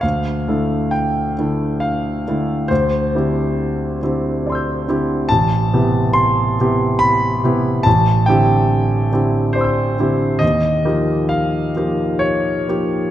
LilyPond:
\new Staff \with { instrumentName = "Grand piano" } { \time 3/4 \key d \minor \tempo 4 = 69 << { f''4 g''4 f''4 | c''4. r8 <d'' c''' e''' g'''>4 | a''4 c'''4 b''4 | a''8 g''4. <c'' d'' c''' e''' g'''>4 |
\key ees \dorian ees''4 f''4 des''4 | } \\ { d,8 <d a e' a'>4 <d a e' a'>4 <d a e' a'>8 | d,8 <d c' e' g'>4 <d c' e' g'>4 <d c' e' g'>8 | a,,8 <c b e' g'>4 <c b e' g'>4 <c b e' g'>8 | a,,8 <d c' e' g'>4 <d c' e' g'>4 <d c' e' g'>8 |
ees,8 <f bes ees' g'>4 <f bes ees' g'>4 <f bes ees' g'>8 | } >> }